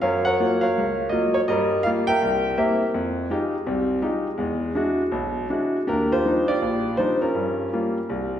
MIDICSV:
0, 0, Header, 1, 2, 480
1, 0, Start_track
1, 0, Key_signature, -3, "major"
1, 0, Tempo, 362100
1, 40, Time_signature, 4, 2, 24, 8
1, 5319, Tempo, 374065
1, 8199, Tempo, 363857
1, 11022, End_track
2, 0, Start_track
2, 0, Title_t, "Grand piano"
2, 0, Program_c, 0, 0
2, 20, Note_on_c, 0, 77, 84
2, 27, Note_on_c, 0, 42, 66
2, 39, Note_on_c, 0, 73, 60
2, 48, Note_on_c, 0, 70, 63
2, 319, Note_off_c, 0, 77, 0
2, 329, Note_on_c, 0, 78, 84
2, 333, Note_off_c, 0, 70, 0
2, 337, Note_off_c, 0, 73, 0
2, 353, Note_on_c, 0, 70, 58
2, 357, Note_on_c, 0, 73, 60
2, 456, Note_off_c, 0, 42, 0
2, 530, Note_on_c, 0, 54, 54
2, 531, Note_on_c, 0, 58, 48
2, 534, Note_on_c, 0, 65, 57
2, 809, Note_off_c, 0, 70, 0
2, 811, Note_on_c, 0, 77, 85
2, 817, Note_off_c, 0, 73, 0
2, 829, Note_on_c, 0, 70, 62
2, 837, Note_on_c, 0, 73, 58
2, 845, Note_off_c, 0, 78, 0
2, 858, Note_off_c, 0, 54, 0
2, 859, Note_off_c, 0, 58, 0
2, 860, Note_off_c, 0, 65, 0
2, 1030, Note_on_c, 0, 37, 64
2, 1437, Note_off_c, 0, 77, 0
2, 1439, Note_off_c, 0, 37, 0
2, 1450, Note_on_c, 0, 75, 69
2, 1489, Note_on_c, 0, 58, 45
2, 1491, Note_on_c, 0, 54, 52
2, 1492, Note_on_c, 0, 65, 55
2, 1742, Note_off_c, 0, 70, 0
2, 1746, Note_off_c, 0, 73, 0
2, 1779, Note_on_c, 0, 73, 79
2, 1787, Note_off_c, 0, 75, 0
2, 1814, Note_off_c, 0, 58, 0
2, 1815, Note_off_c, 0, 54, 0
2, 1815, Note_off_c, 0, 65, 0
2, 1845, Note_off_c, 0, 73, 0
2, 1962, Note_on_c, 0, 75, 88
2, 1966, Note_on_c, 0, 43, 68
2, 1973, Note_on_c, 0, 55, 66
2, 1986, Note_on_c, 0, 70, 70
2, 2386, Note_off_c, 0, 43, 0
2, 2390, Note_off_c, 0, 55, 0
2, 2416, Note_off_c, 0, 75, 0
2, 2428, Note_on_c, 0, 77, 97
2, 2464, Note_on_c, 0, 55, 58
2, 2470, Note_on_c, 0, 65, 64
2, 2474, Note_on_c, 0, 58, 50
2, 2500, Note_off_c, 0, 77, 0
2, 2745, Note_off_c, 0, 70, 0
2, 2746, Note_on_c, 0, 79, 106
2, 2764, Note_on_c, 0, 70, 72
2, 2766, Note_on_c, 0, 76, 67
2, 2783, Note_off_c, 0, 55, 0
2, 2786, Note_off_c, 0, 65, 0
2, 2788, Note_off_c, 0, 58, 0
2, 2944, Note_on_c, 0, 36, 69
2, 3350, Note_off_c, 0, 36, 0
2, 3396, Note_off_c, 0, 76, 0
2, 3408, Note_off_c, 0, 70, 0
2, 3416, Note_on_c, 0, 60, 50
2, 3416, Note_on_c, 0, 76, 68
2, 3417, Note_on_c, 0, 58, 56
2, 3420, Note_on_c, 0, 64, 59
2, 3423, Note_off_c, 0, 79, 0
2, 3428, Note_on_c, 0, 70, 54
2, 3431, Note_on_c, 0, 67, 58
2, 3731, Note_off_c, 0, 60, 0
2, 3732, Note_off_c, 0, 58, 0
2, 3733, Note_off_c, 0, 64, 0
2, 3774, Note_off_c, 0, 76, 0
2, 3862, Note_off_c, 0, 70, 0
2, 3864, Note_off_c, 0, 67, 0
2, 3899, Note_on_c, 0, 41, 69
2, 4304, Note_off_c, 0, 41, 0
2, 4377, Note_on_c, 0, 56, 58
2, 4386, Note_on_c, 0, 65, 52
2, 4390, Note_on_c, 0, 63, 51
2, 4392, Note_on_c, 0, 67, 65
2, 4688, Note_off_c, 0, 56, 0
2, 4692, Note_off_c, 0, 65, 0
2, 4694, Note_off_c, 0, 63, 0
2, 4696, Note_off_c, 0, 67, 0
2, 4858, Note_on_c, 0, 48, 72
2, 4860, Note_on_c, 0, 36, 66
2, 5263, Note_off_c, 0, 48, 0
2, 5264, Note_off_c, 0, 36, 0
2, 5325, Note_on_c, 0, 56, 55
2, 5333, Note_on_c, 0, 65, 46
2, 5334, Note_on_c, 0, 63, 52
2, 5335, Note_on_c, 0, 67, 56
2, 5639, Note_off_c, 0, 56, 0
2, 5643, Note_off_c, 0, 65, 0
2, 5644, Note_off_c, 0, 63, 0
2, 5644, Note_off_c, 0, 67, 0
2, 5786, Note_on_c, 0, 56, 64
2, 5797, Note_on_c, 0, 40, 65
2, 6200, Note_off_c, 0, 56, 0
2, 6206, Note_off_c, 0, 40, 0
2, 6266, Note_on_c, 0, 56, 54
2, 6268, Note_on_c, 0, 62, 49
2, 6275, Note_on_c, 0, 64, 49
2, 6283, Note_on_c, 0, 66, 63
2, 6590, Note_off_c, 0, 56, 0
2, 6592, Note_off_c, 0, 62, 0
2, 6595, Note_off_c, 0, 64, 0
2, 6599, Note_off_c, 0, 66, 0
2, 6736, Note_on_c, 0, 35, 69
2, 7163, Note_off_c, 0, 35, 0
2, 7226, Note_on_c, 0, 62, 48
2, 7228, Note_on_c, 0, 56, 50
2, 7235, Note_on_c, 0, 66, 54
2, 7246, Note_on_c, 0, 64, 44
2, 7560, Note_off_c, 0, 62, 0
2, 7561, Note_off_c, 0, 56, 0
2, 7565, Note_off_c, 0, 66, 0
2, 7570, Note_off_c, 0, 64, 0
2, 7705, Note_on_c, 0, 62, 58
2, 7711, Note_on_c, 0, 67, 60
2, 7725, Note_on_c, 0, 70, 79
2, 7732, Note_on_c, 0, 39, 56
2, 8005, Note_off_c, 0, 70, 0
2, 8006, Note_off_c, 0, 67, 0
2, 8022, Note_on_c, 0, 65, 61
2, 8025, Note_on_c, 0, 67, 61
2, 8029, Note_on_c, 0, 72, 84
2, 8139, Note_off_c, 0, 39, 0
2, 8179, Note_off_c, 0, 62, 0
2, 8195, Note_on_c, 0, 53, 48
2, 8199, Note_on_c, 0, 62, 42
2, 8207, Note_on_c, 0, 55, 41
2, 8213, Note_on_c, 0, 63, 51
2, 8474, Note_off_c, 0, 67, 0
2, 8477, Note_off_c, 0, 65, 0
2, 8493, Note_on_c, 0, 67, 57
2, 8495, Note_on_c, 0, 74, 82
2, 8497, Note_on_c, 0, 65, 61
2, 8522, Note_off_c, 0, 53, 0
2, 8523, Note_off_c, 0, 72, 0
2, 8524, Note_off_c, 0, 62, 0
2, 8528, Note_off_c, 0, 55, 0
2, 8531, Note_off_c, 0, 63, 0
2, 8676, Note_on_c, 0, 34, 59
2, 9094, Note_off_c, 0, 34, 0
2, 9143, Note_on_c, 0, 72, 78
2, 9158, Note_on_c, 0, 53, 51
2, 9166, Note_on_c, 0, 62, 46
2, 9168, Note_on_c, 0, 55, 46
2, 9168, Note_on_c, 0, 63, 49
2, 9179, Note_off_c, 0, 74, 0
2, 9410, Note_off_c, 0, 67, 0
2, 9412, Note_off_c, 0, 65, 0
2, 9437, Note_off_c, 0, 72, 0
2, 9461, Note_on_c, 0, 70, 69
2, 9467, Note_on_c, 0, 65, 48
2, 9471, Note_on_c, 0, 61, 48
2, 9484, Note_off_c, 0, 53, 0
2, 9488, Note_off_c, 0, 62, 0
2, 9489, Note_off_c, 0, 55, 0
2, 9489, Note_off_c, 0, 63, 0
2, 9638, Note_on_c, 0, 43, 59
2, 10055, Note_off_c, 0, 43, 0
2, 10127, Note_off_c, 0, 65, 0
2, 10142, Note_on_c, 0, 55, 49
2, 10147, Note_on_c, 0, 65, 57
2, 10152, Note_on_c, 0, 58, 44
2, 10455, Note_off_c, 0, 55, 0
2, 10457, Note_off_c, 0, 65, 0
2, 10460, Note_off_c, 0, 58, 0
2, 10552, Note_off_c, 0, 61, 0
2, 10624, Note_on_c, 0, 36, 66
2, 11022, Note_off_c, 0, 36, 0
2, 11022, Note_off_c, 0, 70, 0
2, 11022, End_track
0, 0, End_of_file